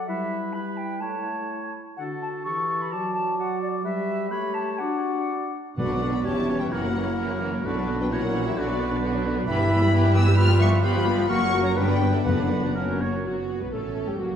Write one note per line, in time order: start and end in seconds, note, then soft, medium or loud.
0.07 1.01 G3 medium
0.07 0.51 E4 medium
0.07 0.52 B4 medium
0.07 0.54 E5 medium
0.53 1.01 E4 soft
0.53 1.01 B4 medium
0.53 0.79 B5 medium
0.77 1.02 G5 medium
1.00 1.73 A3 soft
1.00 1.72 E4 soft
1.00 1.72 C#5 soft
1.00 1.73 A5 medium
1.97 2.42 D3 soft
1.97 2.48 F#4 soft
1.97 2.42 A4 soft
1.97 2.03 F#5 medium
2.22 2.28 A5 medium
2.44 2.92 E3 soft
2.44 2.94 G4 soft
2.44 2.94 A4 soft
2.44 2.83 C#6 medium
2.82 2.94 B5 medium
2.92 3.85 F#3 medium
2.92 3.37 F#4 soft
2.92 3.39 D5 soft
2.92 3.13 A5 medium
3.14 3.37 A5 medium
3.38 3.83 F#4 soft
3.38 3.84 D5 soft
3.38 3.61 F#5 medium
3.62 3.68 D5 medium
3.84 4.30 G3 medium
3.84 4.28 G4 medium
3.84 4.33 B4 soft
3.84 4.30 E5 medium
4.30 4.79 A3 medium
4.30 4.83 G4 medium
4.30 4.82 C#5 medium
4.30 4.56 B5 medium
4.54 4.80 A5 medium
4.78 5.54 D4 medium
4.78 5.54 F#4 soft
4.78 5.54 D5 soft
4.78 5.53 F#5 medium
5.77 6.22 B1 medium
5.77 6.22 B2 medium
5.77 5.89 D3 soft
5.77 5.89 D4 medium
5.77 5.89 D4 soft
5.77 6.22 D4 soft
5.77 6.27 F#4 medium
5.77 6.22 F#4 soft
5.77 6.10 B4 medium
5.77 5.89 B4 medium
5.77 6.26 D5 soft
5.77 6.11 F#5 medium
5.90 6.02 F#3 soft
5.90 6.02 B3 soft
5.90 6.01 F#4 soft
5.90 6.01 D5 soft
6.01 6.13 D3 soft
6.01 6.13 D4 soft
6.01 6.13 B4 soft
6.12 6.25 F#3 soft
6.12 6.25 B3 soft
6.12 6.24 F#4 soft
6.12 6.24 D5 soft
6.12 6.25 D5 medium
6.12 6.25 B5 medium
6.24 6.72 E1 medium
6.24 6.72 E2 medium
6.24 6.36 E3 soft
6.24 6.36 C#4 soft
6.24 6.72 C#4 medium
6.24 6.36 G4 medium
6.24 6.73 G4 medium
6.24 6.35 C#5 soft
6.24 6.74 C#5 medium
6.24 6.60 C#5 medium
6.24 6.59 A5 medium
6.35 6.49 G3 soft
6.35 6.48 E4 soft
6.35 6.48 E5 soft
6.48 6.61 E3 medium
6.48 6.60 C#4 soft
6.48 6.60 G4 soft
6.48 6.60 C#5 soft
6.59 6.72 G3 soft
6.59 6.72 E4 soft
6.59 6.75 B4 medium
6.59 6.72 E5 soft
6.59 6.64 G5 medium
6.71 7.63 F#1 medium
6.71 7.63 F#2 medium
6.71 6.83 E3 soft
6.71 7.63 A#3 medium
6.71 6.83 C#4 soft
6.71 7.65 E4 medium
6.71 6.82 F#4 soft
6.71 6.83 A#4 medium
6.71 7.68 A#4 soft
6.71 7.42 A#4 medium
6.71 7.39 F#5 medium
6.83 6.95 F#3 soft
6.83 6.95 A#3 soft
6.83 6.95 E4 soft
6.83 6.95 C#5 soft
6.94 7.07 E3 soft
6.94 7.07 C#4 soft
6.94 7.06 F#4 soft
6.94 7.06 A#4 soft
7.05 7.18 F#3 soft
7.05 7.18 A#3 soft
7.05 7.18 E4 soft
7.05 7.18 C#5 soft
7.17 7.29 E3 soft
7.17 7.29 C#4 soft
7.17 7.29 F#4 medium
7.17 7.28 A#4 medium
7.29 7.42 F#3 soft
7.29 7.42 A#3 soft
7.29 7.41 E4 soft
7.29 7.41 C#5 medium
7.40 7.53 E3 medium
7.40 7.53 C#4 medium
7.40 7.53 F#4 medium
7.40 7.53 A#4 medium
7.51 7.65 F#3 medium
7.51 7.65 A#3 soft
7.51 7.64 E4 soft
7.51 7.64 C#5 soft
7.63 8.12 B1 medium
7.63 8.11 B2 medium
7.63 7.76 D3 soft
7.63 9.48 F#3 medium
7.63 7.75 B3 medium
7.63 7.76 B3 medium
7.63 8.11 D4 soft
7.63 8.13 D4 medium
7.63 7.75 F#4 medium
7.63 7.98 F#4 medium
7.63 8.14 B4 medium
7.63 7.98 D5 medium
7.75 7.88 F#3 soft
7.75 7.88 D4 soft
7.75 7.88 B4 medium
7.87 8.00 D3 medium
7.87 7.99 B3 medium
7.87 8.00 B3 soft
7.87 7.99 F#4 medium
7.99 8.12 F#3 medium
7.99 8.11 D4 medium
7.99 8.12 D4 medium
7.99 8.11 B4 medium
7.99 8.12 B4 medium
7.99 8.05 G5 medium
8.11 8.57 A#1 medium
8.11 8.57 A#2 medium
8.11 8.22 E3 soft
8.11 8.22 C#4 medium
8.11 8.59 E4 medium
8.11 8.58 E4 medium
8.11 8.22 F#4 medium
8.11 8.46 A#4 medium
8.11 8.59 C#5 medium
8.11 8.45 F#5 medium
8.22 8.34 F#3 medium
8.22 8.34 A#3 soft
8.22 8.34 E4 medium
8.22 8.34 A#4 medium
8.33 8.45 E3 medium
8.33 8.45 C#4 medium
8.33 8.46 F#4 medium
8.44 8.56 F#3 medium
8.44 8.57 A#3 soft
8.44 8.57 E4 medium
8.44 8.56 G4 medium
8.44 8.57 A#4 medium
8.44 8.58 E5 medium
8.56 9.46 B1 medium
8.56 9.46 B2 medium
8.56 8.67 D3 medium
8.56 8.67 B3 medium
8.56 8.68 B3 medium
8.56 9.48 D4 medium
8.56 8.68 F#4 medium
8.56 9.24 F#4 medium
8.56 9.46 B4 medium
8.56 9.25 D5 medium
8.67 8.80 F#3 medium
8.67 8.79 D4 soft
8.67 8.80 D4 medium
8.67 8.80 B4 medium
8.79 8.91 D3 medium
8.79 8.91 B3 medium
8.79 8.92 B3 medium
8.79 8.92 F#4 medium
8.91 9.02 F#3 medium
8.91 9.02 D4 medium
8.91 9.03 D4 medium
8.91 9.03 B4 medium
9.02 9.13 D3 medium
9.02 9.13 B3 medium
9.02 9.13 F#4 medium
9.13 9.25 F#3 medium
9.13 9.25 D4 medium
9.13 9.25 B4 medium
9.24 9.36 D3 medium
9.24 9.36 B3 medium
9.24 9.37 B3 medium
9.24 9.37 F#4 medium
9.36 9.48 F#3 medium
9.36 9.48 D4 medium
9.36 9.47 B4 medium
9.47 11.26 G1 medium
9.47 11.26 G2 medium
9.47 9.58 E3 medium
9.47 10.36 G3 medium
9.47 9.58 B3 medium
9.47 10.36 E4 medium
9.47 10.40 E4 medium
9.47 9.58 G4 medium
9.47 11.25 B4 medium
9.47 9.58 B4 medium
9.47 10.11 E5 medium
9.47 10.11 B5 loud
9.59 9.70 G3 medium
9.59 9.70 E4 medium
9.59 9.70 G4 medium
9.70 9.81 E3 medium
9.70 9.81 B3 medium
9.70 9.81 G4 medium
9.70 9.82 B4 medium
9.82 9.93 G3 medium
9.82 9.93 E4 medium
9.82 9.92 G4 medium
9.93 10.03 E3 medium
9.93 10.03 B3 medium
9.93 10.04 G4 medium
9.93 10.04 B4 medium
10.04 10.15 G3 medium
10.04 10.16 E4 medium
10.04 10.15 G4 medium
10.14 10.26 E3 medium
10.14 10.27 B3 medium
10.14 10.26 G4 medium
10.14 10.27 B4 medium
10.14 10.20 G5 loud
10.14 10.38 E6 loud
10.27 10.36 G3 medium
10.27 10.38 E4 medium
10.27 10.37 G4 medium
10.37 11.29 F3 medium
10.37 10.48 G3 medium
10.37 10.48 B3 medium
10.37 11.27 F4 medium
10.37 11.28 F4 medium
10.37 10.48 G4 medium
10.37 10.48 B4 medium
10.37 10.43 B5 loud
10.37 10.60 F6 loud
10.49 10.60 F3 medium
10.49 10.60 G3 medium
10.49 10.60 F4 medium
10.49 10.60 G4 medium
10.59 10.71 G3 medium
10.59 10.72 B3 medium
10.59 10.69 G4 medium
10.59 10.72 B4 medium
10.59 10.82 E5 loud
10.59 10.69 C#6 loud
10.71 10.83 F3 medium
10.71 10.83 G3 medium
10.71 10.83 F4 medium
10.71 10.81 G4 medium
10.82 10.94 G3 medium
10.82 10.94 B3 medium
10.82 10.93 G4 medium
10.82 10.93 B4 medium
10.82 11.28 F5 medium
10.82 11.28 B5 loud
10.94 11.06 F3 medium
10.94 11.05 G3 medium
10.94 11.06 F4 medium
10.94 11.04 G4 medium
11.06 11.16 G3 medium
11.06 11.17 B3 medium
11.06 11.16 G4 medium
11.06 11.17 B4 medium
11.17 11.29 F3 medium
11.17 11.29 G3 medium
11.17 11.29 F4 medium
11.17 11.29 G4 medium
11.28 11.75 F#1 medium
11.28 11.75 F#2 medium
11.28 11.39 A#3 medium
11.28 11.40 A#3 medium
11.28 11.76 A#3 medium
11.28 11.39 F#4 medium
11.28 11.77 F#4 medium
11.28 11.78 A#4 medium
11.28 11.63 F#5 loud
11.28 11.64 C#6 loud
11.40 11.52 F#3 medium
11.40 11.52 C#4 medium
11.40 11.52 A#4 medium
11.52 11.64 A#3 medium
11.52 11.64 F#4 medium
11.63 11.76 F#3 medium
11.63 11.76 C#4 medium
11.63 11.76 A#4 medium
11.63 11.69 C#5 medium
11.63 11.77 A#5 medium
11.75 12.26 G1 medium
11.75 12.26 G2 medium
11.75 11.88 G3 medium
11.75 11.88 B3 medium
11.75 12.76 B3 medium
11.75 12.25 D4 medium
11.75 11.88 D4 medium
11.75 12.77 D4 medium
11.75 12.14 B4 medium
11.75 11.88 B4 medium
11.75 12.11 B4 medium
11.75 12.13 G5 loud
11.88 12.01 D3 medium
11.88 12.01 B3 medium
11.88 12.01 D4 medium
11.88 12.01 D5 medium
12.01 12.13 G3 medium
12.01 12.13 B3 medium
12.01 12.14 D4 medium
12.01 12.14 B4 medium
12.13 12.25 D3 soft
12.13 12.26 B3 medium
12.13 12.26 D4 medium
12.13 12.24 G4 medium
12.13 12.26 D5 medium
12.13 12.26 E5 medium
12.25 13.03 F#1 medium
12.25 13.03 F#2 medium
12.25 12.73 F#2 medium
12.25 12.38 D3 medium
12.25 12.38 B3 soft
12.25 12.78 D4 medium
12.25 12.38 F#4 medium
12.25 12.74 B4 medium
12.25 12.38 B4 medium
12.25 12.74 B4 medium
12.25 12.76 F#5 medium
12.38 12.51 F#3 soft
12.38 12.51 D4 soft
12.38 12.51 D5 medium
12.50 12.63 D3 soft
12.50 12.63 B3 soft
12.50 12.64 F#4 medium
12.50 12.63 B4 medium
12.64 12.76 F#3 medium
12.64 12.76 D4 soft
12.64 12.76 D5 soft
12.75 12.87 A#3 soft
12.75 13.01 A#3 medium
12.75 13.01 C#4 medium
12.75 12.88 F#4 medium
12.75 13.02 A#4 medium
12.75 12.88 C#5 soft
12.88 13.01 F#3 soft
12.88 13.01 C#4 soft
12.88 13.01 A#4 soft
13.01 13.13 A#3 medium
13.01 13.13 F#4 medium
13.01 13.25 C#5 medium
13.01 13.13 C#5 soft
13.14 13.25 F#3 soft
13.14 13.25 C#4 soft
13.14 13.26 C#4 soft
13.14 13.26 A#4 soft
13.25 13.58 F#1 soft
13.25 13.58 F#3 soft
13.25 13.69 B3 soft
13.25 13.58 F#4 soft
13.25 13.63 F#4 medium
13.60 13.72 B1 soft
13.60 13.73 B3 soft
13.60 13.72 B4 soft
13.60 13.73 B4 soft
13.60 13.74 B4 medium
13.72 14.07 A1 medium
13.72 14.07 A3 soft
13.72 14.19 C#4 soft
13.72 14.06 A4 soft
13.72 14.07 A4 soft
13.72 14.10 A4 medium
14.07 14.19 G1 soft
14.07 14.19 G3 soft
14.07 14.19 G4 soft
14.07 14.21 G4 medium
14.18 14.36 F#1 soft
14.18 14.36 F#3 soft
14.18 14.36 A#3 soft
14.18 14.36 F#4 soft
14.18 14.36 F#4 medium